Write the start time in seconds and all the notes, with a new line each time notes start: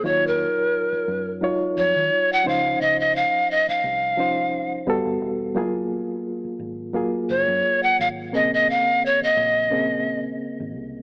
0.03 D#2 F#3 D#4 F4 C#5
0.27 A#4
0.93 muted fingered electric bass stroke
1.08 F#2
1.41 F#3 D#4 F4 C#5
1.77 F2 C#5
1.96 D#3
2.33 F#5
2.44 C#2 F3 C#4 D#4 C5
2.48 F5
2.81 C#2 D#5
3.00 D#5
3.16 F5
3.51 D#5
3.68 F5, muted fingered electric bass stroke
3.84 C2
4.17 F3 C#4 D#4 C5
4.87 G1 G3 B3 F#4 A4
5.05 G1
5.21 E1
5.55 F#1 F#3 A#3 F4 G#4
6.45 muted fingered electric bass stroke
6.59 G#1
6.93 F#3 A#3 F4 G#4
7.30 F#1 C#5
7.48 F#2
7.83 F#5
7.99 G#1 F5
8.32 A#1 C3 A#3 C4 G#4 D#5
8.39 C#3
8.54 D#5
8.70 F5
9.06 C#5
9.22 D#5, muted fingered electric bass stroke
9.37 A#1
9.70 C#3 A#3 C4 G#4
10.60 G#1
10.76 C2